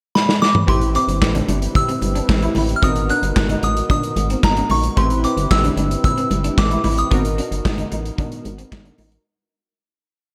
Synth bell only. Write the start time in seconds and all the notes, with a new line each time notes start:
0.15 B5
0.42 D6
0.69 C6
0.96 D6
1.76 E6
2.76 F6
2.84 D#6
3.10 F#6
3.64 D#6
3.91 D#6
4.45 A#5
4.71 C#6
4.98 C6
5.25 D6
5.51 E6
6.05 E6
6.58 D6
6.99 D#6